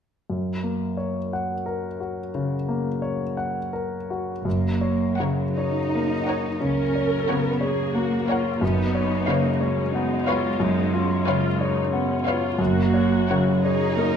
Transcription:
0.30 grand piano F#2
0.63 grand piano A#3
0.97 grand piano C#5
1.33 grand piano F#5
1.66 grand piano A#4
2.00 grand piano F#4
2.35 grand piano C#3
2.68 grand piano A#3
3.02 grand piano C#5
3.37 grand piano F#5
3.73 grand piano A#4
4.10 grand piano F#4
4.45 double bass section F#1, grand piano F#2, cello section A#3
4.81 grand piano C#5
5.19 grand piano C#3, cello section F#3, violin section A#4 C#5 F#5
5.57 cello section D#4, grand piano C#5
5.95 grand piano A#3
6.27 violin section A#4 C#5 F#5, grand piano C#5
6.61 double bass section C#2, grand piano C#3, cello section C#4, viola section A#4
6.95 grand piano C#5
7.28 grand piano C#3, cello section B3, violin section A#4 C#5 F#5
7.61 cello section A#3, viola section G#4, grand piano C#5
7.95 grand piano A#3, viola section F#4
8.27 viola section F4, violin section A#4 C#5 F#5, grand piano C#5
8.61 double bass section F#1, grand piano F#2, cello section B3, viola section D#4
8.95 grand piano C#5
9.28 grand piano C#3, cello section A#3, violin section B4 C#5 F5
9.61 cello section G#3, viola section C#4, grand piano C#5
9.93 grand piano B3, viola section D#4
10.28 viola section F4, violin section B4 C#5 F5, grand piano C#5
10.60 double bass section F#1, grand piano F#2, viola section D#4
10.93 viola section C#4, grand piano F4
11.27 grand piano C#3, viola section F4, violin section B4 C#5 F5
11.60 viola section D#4, grand piano C#5
11.93 grand piano B3, viola section C#4
12.27 viola section F4, violin section B4 C#5 F5, grand piano C#5
12.59 double bass section F#1, grand piano F#2, cello section A#3, viola section F#4
12.94 grand piano C#5
13.30 grand piano C#3, cello section F#3, violin section A#4 C#5 F#5
13.64 cello section D#4, viola section G#4, grand piano C#5
13.96 grand piano A#3, viola section A#4

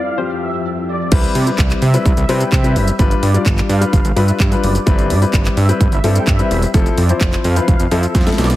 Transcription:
Already playing: grand piano F3 E4 A4, ambient pad F3, synth pluck D5, supersaw synth F5
0.18 grand piano F3 C4 G4, synth pluck C5
0.41 supersaw synth E5
0.88 supersaw synth D5
1.12 analog synth bass C2, grand piano G3 C4 E4 B4, kick, closed hi-hat, crash, shaker
1.24 closed hi-hat, shaker
1.35 analog synth bass C3, supersaw synth D5, open hi-hat, shaker
1.47 grand piano G3 C4 E4 B4, closed hi-hat, shaker
1.58 analog synth bass C2, kick, clap, closed hi-hat, shaker
1.70 clap, closed hi-hat, shaker
1.82 analog synth bass C3, supersaw synth E5, open hi-hat, shaker
1.94 grand piano G3 C4 E4 B4, closed hi-hat, shaker
2.06 analog synth bass C2, kick, closed hi-hat, shaker
2.17 analog synth bass C2, supersaw synth E5, closed hi-hat, shaker
2.29 analog synth bass C3, grand piano G3 C4 E4 B4, open hi-hat, shaker
2.40 supersaw synth G5, closed hi-hat, shaker
2.52 analog synth bass C3, supersaw synth E5, kick, clap, closed hi-hat, shaker
2.64 grand piano G3 C4 E4 B4, closed hi-hat, shaker
2.76 analog synth bass F#1, open hi-hat, shaker
2.88 closed hi-hat, shaker
2.99 analog synth bass G1, grand piano G3 D4 F4 B4, kick, closed hi-hat, shaker
3.11 closed hi-hat, shaker
3.23 analog synth bass G2, supersaw synth D5, open hi-hat, shaker
3.34 grand piano G3 D4 F4 D5, closed hi-hat, shaker
3.46 analog synth bass G1, kick, clap, closed hi-hat, shaker
3.58 clap, closed hi-hat, shaker
3.69 analog synth bass G2, supersaw synth F5, open hi-hat, shaker
3.81 grand piano G3 D4 F4 B4, closed hi-hat, shaker
3.93 analog synth bass G1, kick, closed hi-hat, shaker
4.05 analog synth bass G1, closed hi-hat, shaker
4.16 analog synth bass G2, grand piano G3 D4 F4 B4, supersaw synth E5, open hi-hat, shaker
4.28 closed hi-hat, shaker
4.40 analog synth bass G2, kick, clap, closed hi-hat, shaker
4.51 grand piano G3 D4 F4 B4, closed hi-hat, shaker
4.63 analog synth bass F#1, supersaw synth D5, open hi-hat, shaker
4.75 closed hi-hat, shaker
4.86 analog synth bass G1, grand piano G3 C4 E4 B4, kick, closed hi-hat, shaker
4.99 closed hi-hat, shaker
5.10 analog synth bass G2, supersaw synth D5, open hi-hat, shaker
5.22 grand piano G3 C4 E4 B4, closed hi-hat, shaker
5.33 analog synth bass G1, kick, clap, closed hi-hat, shaker
5.45 clap, closed hi-hat, shaker
5.57 analog synth bass G2, supersaw synth E5, open hi-hat, shaker
5.69 grand piano G3 C4 E4 B4, closed hi-hat, shaker
5.81 analog synth bass G1, kick, closed hi-hat, shaker
5.92 analog synth bass G1, supersaw synth E5, closed hi-hat, shaker
6.04 analog synth bass G2, grand piano G3 C4 E4 A4, open hi-hat, shaker
6.16 supersaw synth G5, closed hi-hat, shaker
6.27 analog synth bass G2, supersaw synth E5, kick, clap, closed hi-hat, shaker
6.39 grand piano G3 C4 E4 B4, closed hi-hat, shaker
6.51 analog synth bass E1, open hi-hat, shaker
6.62 closed hi-hat, shaker
6.74 analog synth bass F1, grand piano F3 C4 E4 A4, kick, closed hi-hat, shaker
6.86 closed hi-hat, shaker
6.98 analog synth bass F2, supersaw synth D5, open hi-hat, shaker
7.09 grand piano F3 C4 E4 C5, closed hi-hat, shaker
7.21 analog synth bass F1, kick, clap, closed hi-hat, shaker
7.33 clap, closed hi-hat, shaker
7.44 analog synth bass F2, supersaw synth F5, open hi-hat, shaker
7.56 grand piano F3 C4 E4 B4, closed hi-hat, shaker
7.68 analog synth bass F1, kick, closed hi-hat, shaker
7.80 analog synth bass F1, closed hi-hat, shaker
7.91 analog synth bass F2, grand piano F3 C4 E4 A4, supersaw synth E5, open hi-hat, shaker
8.03 closed hi-hat, shaker
8.15 analog synth bass F2, kick, snare, closed hi-hat, shaker
8.21 snare
8.26 grand piano F3 C4 E4 A4, snare, closed hi-hat, shaker
8.32 snare
8.38 analog synth bass B1, supersaw synth D5, snare, open hi-hat, shaker
8.44 snare
8.50 snare, closed hi-hat, shaker

